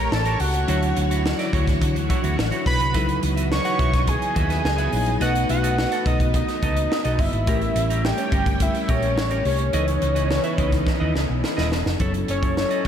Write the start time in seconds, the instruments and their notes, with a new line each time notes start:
Already playing: tine electric piano A3 C#4 G4 A#4, string machine A3 G4 C#5, analog synth lead A#5
0.00 clean electric guitar G4
0.11 fingered electric bass A1, analog synth lead A5, muted clean electric guitar stroke, snare
0.25 clean electric guitar G4 A#4 C#5, closed hi-hat
0.40 fingered electric bass C#2, analog synth lead F#5, muted clean electric guitar stroke, open hi-hat
0.54 muted clean electric guitar stroke, closed hi-hat
0.67 fingered electric bass D2, string machine D3 E3 F#4, tine electric piano F#3 D4 E4 C#5, clean electric guitar E4 F#4 C#5, closed hi-hat
0.82 muted clean electric guitar stroke, closed hi-hat
0.96 fingered electric bass D2, muted clean electric guitar stroke, closed hi-hat
1.11 clean electric guitar E4 F#4 C#5, closed hi-hat
1.25 muted clean electric guitar stroke, snare
1.39 clean electric guitar E4 F#4 D5, snare, closed hi-hat
1.53 fingered electric bass D2, clean electric guitar E4 F#4 C#5, kick, closed hi-hat
1.67 kick, snare, closed hi-hat
1.81 fingered electric bass D3, muted clean electric guitar stroke, kick, closed hi-hat
1.95 fingered electric bass D2, muted clean electric guitar stroke, closed hi-hat
2.09 clean electric guitar E4 F#4 C#5, kick, closed hi-hat
2.23 fingered electric bass D2, clean electric guitar E4 F#4 C#5, closed hi-hat
2.37 fingered electric bass A1, muted clean electric guitar stroke, snare
2.51 clean electric guitar E4 F#4 C#5, closed hi-hat
2.66 fingered electric bass B1, analog synth lead B5, muted clean electric guitar stroke, kick, open hi-hat
2.80 fingered electric bass C2, muted clean electric guitar stroke, closed hi-hat
2.94 fingered electric bass C#2, string machine C#3 B3 D#5, tine electric piano F#3 D#4 E4 A4, clean electric guitar F#4 B4 E5, kick, closed hi-hat
3.03 tine electric piano B4
3.08 muted clean electric guitar stroke, closed hi-hat
3.22 fingered electric bass C#2, muted clean electric guitar stroke, closed hi-hat
3.36 clean electric guitar F#4 B4 E5, closed hi-hat
3.51 analog synth lead C#6, muted clean electric guitar stroke, snare
3.65 clean electric guitar F#4 B4 F#5, snare, closed hi-hat
3.79 fingered electric bass B1, clean electric guitar F#4 B4 E5, kick, closed hi-hat
3.94 kick, snare, closed hi-hat
4.07 analog synth lead G#5, muted clean electric guitar stroke, kick, closed hi-hat
4.21 muted clean electric guitar stroke, closed hi-hat
4.35 fingered electric bass D#2, clean electric guitar F#4 B4 E5, kick, closed hi-hat
4.49 clean electric guitar F#4 B4 E5, snare, closed hi-hat
4.64 fingered electric bass C#2, analog synth lead G#5, muted clean electric guitar stroke, snare
4.78 clean electric guitar F#4 B4 E5, closed hi-hat
4.92 fingered electric bass A#1, tine electric piano F#3 D#4 E4 C#5, muted clean electric guitar stroke, open hi-hat
5.06 muted clean electric guitar stroke, closed hi-hat
5.20 fingered electric bass B1, tine electric piano A3 D#4 F#4 B4, clean electric guitar F#4 A4 D#5, analog synth lead F#5, closed hi-hat
5.35 muted clean electric guitar stroke, closed hi-hat
5.49 fingered electric bass B1, analog synth lead F#5, muted clean electric guitar stroke, closed hi-hat
5.63 clean electric guitar F#4 A4 D#5, closed hi-hat
5.77 muted clean electric guitar stroke, snare
5.91 clean electric guitar F#4 A4 F#5, snare, closed hi-hat
6.05 fingered electric bass B1, clean electric guitar F#4 A4 D#5, analog synth lead D#5, kick, closed hi-hat
6.20 kick, closed hi-hat
6.34 analog synth lead D#5, muted clean electric guitar stroke, kick, closed hi-hat
6.48 muted clean electric guitar stroke, snare, closed hi-hat
6.62 fingered electric bass C#2, clean electric guitar F#4 A4 D#5, kick, closed hi-hat
6.77 closed hi-hat
6.90 muted clean electric guitar stroke, snare
7.04 fingered electric bass B1, clean electric guitar F#4 A4 D#5, closed hi-hat
7.19 fingered electric bass G1, analog synth lead E5, muted clean electric guitar stroke, kick, open hi-hat
7.33 fingered electric bass G#1, muted clean electric guitar stroke, closed hi-hat
7.46 fingered electric bass A1, string machine G3 C#4, tine electric piano A3 C#4 G4 A#4, clean electric guitar C#4 G4 A#4, kick, closed hi-hat
7.61 muted clean electric guitar stroke, closed hi-hat
7.75 fingered electric bass A1, muted clean electric guitar stroke, closed hi-hat
7.90 clean electric guitar C#4 G4 A#4, closed hi-hat
8.04 analog synth lead G5, muted clean electric guitar stroke, snare
8.18 clean electric guitar C#4 G4 C#5, closed hi-hat
8.32 fingered electric bass G1, clean electric guitar C#4 G4 A#4, kick, closed hi-hat
8.46 muted clean electric guitar stroke, kick, closed hi-hat
8.60 analog synth lead E5, muted clean electric guitar stroke, kick, closed hi-hat
8.74 muted clean electric guitar stroke, closed hi-hat
8.88 fingered electric bass A#1, clean electric guitar C#4 G4 A#4, analog synth lead C#5, kick, closed hi-hat
9.02 clean electric guitar C#4 G4 A#4, closed hi-hat
9.16 fingered electric bass A1, muted clean electric guitar stroke, snare
9.31 clean electric guitar C#4 G4 A#4, closed hi-hat
9.45 fingered electric bass C2, tine electric piano A3 C#4 G4 A#4, analog synth lead C#5, muted clean electric guitar stroke, open hi-hat
9.59 muted clean electric guitar stroke, closed hi-hat
9.72 fingered electric bass C#2, string machine C#3 E3 B3 D#4, tine electric piano E3 C#4 D#4 A4, clean electric guitar E4 B4 D#5, closed hi-hat
9.82 tine electric piano B4
9.87 muted clean electric guitar stroke, closed hi-hat
10.01 fingered electric bass C#2, muted clean electric guitar stroke, closed hi-hat
10.15 clean electric guitar E4 B4 D#5, closed hi-hat
10.29 muted clean electric guitar stroke, snare
10.44 clean electric guitar E4 B4 E5, closed hi-hat
10.58 fingered electric bass C#2, clean electric guitar E4 B4 D#5, kick, closed hi-hat
10.72 muted clean electric guitar stroke, kick, snare, closed hi-hat
10.86 muted clean electric guitar stroke, kick, snare
11.00 fingered electric bass D#2, clean electric guitar E4 B4 D#5
11.16 fingered electric bass C#2, snare
11.29 fingered electric bass B1, muted clean electric guitar stroke
11.43 muted clean electric guitar stroke, snare
11.57 fingered electric bass D#1, clean electric guitar E4 B4 D#5, snare
11.71 fingered electric bass E1, muted clean electric guitar stroke, snare
11.85 fingered electric bass F1, muted clean electric guitar stroke, snare
11.99 fingered electric bass F#1, tine electric piano F#3 C#4 E4 A4, string machine F#3 C#4 E4 A4, clean electric guitar E4 A4 C#5, kick, closed hi-hat
12.14 muted clean electric guitar stroke, closed hi-hat
12.28 fingered electric bass F#1, analog synth lead C#5, muted clean electric guitar stroke, closed hi-hat
12.42 clean electric guitar E4 A4 C#5, kick, closed hi-hat
12.56 analog synth lead C#5, muted clean electric guitar stroke, snare
12.71 clean electric guitar E4 A4 D#5, closed hi-hat
12.84 clean electric guitar E4